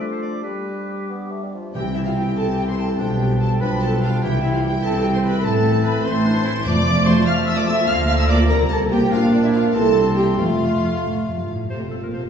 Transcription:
Already playing: F3 A3 D4 A4 D6
0.01 B4
0.11 C5
0.22 D5
0.42 G3 G4 B4 D6
1.09 B3
1.31 A3
1.43 G3
1.54 F3
1.75 C2 C3 E3 G3 C4 E4 G4 G5
1.95 E4 E5
2.05 F4 F5
2.15 G4 G5
2.36 C2 C3 A4 A5
2.57 G4 G5
2.68 C5 C6
2.78 A4 A5
2.99 B1 B2 F3 D4 F4 G4 G5
3.40 A4 A5
3.61 B1 B2 F3 D4 B4 G5 B5
3.81 A4 A5
4.01 F4 F5
4.21 C2 C3 E3 G3 E4 G4 G5
4.42 E4 E5
4.53 F4 F5
4.63 G4 G5
4.83 C2 C3 C4 A4 A5
5.03 G4 G5
5.13 C5 C6
5.23 B4 B5
5.43 A1 A2 E3 A3 A4 A5
5.83 B4 B5
6.04 A1 A2 E3 C4 C5 A5 C6
6.25 D4
6.45 E4
6.65 F1 F2 F3 A3 D5 A5 D6
7.06 A3 F4 C5 C6
7.26 F5 F6
7.46 E5 E6
7.57 D5 D6
7.67 A3 F4 E5 E6
7.86 D2 D3 A#3 F5 A#5 F6
8.07 F5 F6
8.17 E5 E6
8.28 A#3 F4 D5 D6
8.48 C2 C3 A#4 A#5
8.69 A4 A5
8.89 A#3 F4 G4 G5
9.11 A#1 A#2 F3 A#3 D4 F4 F5 D6
9.32 D4 D5
9.43 E4 E5
9.53 F4 F5
9.73 C2 C3 E3 G3 C4 E4 A4 A5 C6
10.16 G4 G5
10.38 F1 F2 A3 F4 F5
11.05 A2
11.27 F2
11.39 G2
11.49 A2
11.69 F1 C3 A3 F4 A4 C5 F5
11.80 C4 F4 C5
11.91 A2 A3 A4 F5
12.01 A#2 C4 F4 A#4 C5
12.12 C3 A3 A4 C5 F5
12.22 C4 F4 C5

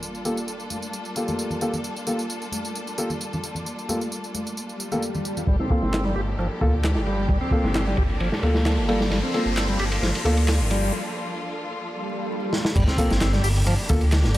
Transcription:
Already playing: G3 A#3 D4 F4 A4
0.03 tambourine
0.15 tambourine
0.25 A#3 F4 G4 A4, tambourine
0.37 tambourine
0.48 tambourine
0.60 tambourine
0.70 tambourine, high conga
0.82 tambourine
0.93 tambourine
1.05 tambourine
1.16 A#3 F4 G4 A4, tambourine
1.28 tambourine, high conga, low conga
1.39 tambourine
1.50 tambourine, low conga
1.61 A#3 F4 G4 A4, tambourine
1.73 tambourine, low conga
1.84 tambourine
1.96 tambourine
2.07 A#3 F4 G4 A4, tambourine
2.19 tambourine
2.30 tambourine
2.42 tambourine
2.52 tambourine, high conga
2.65 tambourine
2.75 tambourine
2.87 tambourine
2.98 A#3 F4 G4 A4, tambourine
3.10 tambourine, low conga
3.21 tambourine
3.33 tambourine, low conga
3.44 tambourine
3.55 tambourine, low conga
3.66 tambourine
3.79 tambourine
3.89 A#3 F4 G4 A4, tambourine, high conga
4.01 tambourine
4.12 tambourine
4.24 tambourine
4.35 tambourine, high conga
4.47 tambourine
4.57 tambourine, swell
4.69 tambourine
4.80 tambourine
4.92 A#3 F4 G4 A4, tambourine, high conga, low conga
5.02 tambourine
5.15 tambourine, low conga
5.25 tambourine
5.37 tambourine, low conga
5.47 G1 F3 G3 A#3 D4 G4 A4, kick, ride, riser
5.60 C4, snare
5.70 A#3 F4 A4, kick
5.82 G1, snare
5.93 snare, clap
6.04 G3, snare
6.16 G1 G4, open hi-hat
6.28 ride
6.38 G1 F3, ride
6.61 D2 A#3 F4 A4, kick, ride
6.74 ride
6.83 snare, clap, ride
6.95 G1, snare
7.06 G3, ride
7.29 G1 G3, kick, ride
7.41 C4
7.51 A#3 F4 A4, kick, ride
7.64 G1, snare
7.75 snare, clap, ride
7.87 G3
7.97 G1 G4, kick, ride
8.09 ride
8.20 G1 F3, ride
8.32 snare
8.43 D2 A#3 F4 A4, ride
8.54 snare
8.66 snare, clap, ride
8.77 G1
8.88 G3 A#3 F4 A4, ride
9.01 snare
9.11 G1 G3 F4, snare, ride
9.23 C4
9.34 A#3 F4 A4, ride
9.46 G1
9.57 snare, clap, ride
9.69 G3
9.79 G1 G4, ride
9.92 ride
10.02 G1 F3, snare, ride
10.15 ride
10.25 D2 A#3 F4 A4, ride
10.37 ride
10.48 snare, clap, ride
10.60 G1
10.71 G3, ride
11.84 swell
12.53 snare
12.65 snare
12.75 G1 F3 G3 A3 A#3 D4 G4, kick, crash, ride, tambourine, sub drop
12.88 C4, snare, tambourine
12.98 A#3 F4 A4, kick, open hi-hat, ride, tambourine
13.10 G1, snare, tambourine
13.21 snare, clap, ride, tambourine
13.33 G3, snare, tambourine
13.43 G1 G4, open hi-hat, tambourine
13.56 ride, tambourine
13.66 G1 F3, ride, tambourine
13.79 tambourine
13.89 D2 A#3 F4 A4, kick, open hi-hat, ride, tambourine
14.01 ride, tambourine
14.12 snare, clap, ride, tambourine
14.23 G1, snare, tambourine
14.34 G3, open hi-hat, ride, tambourine

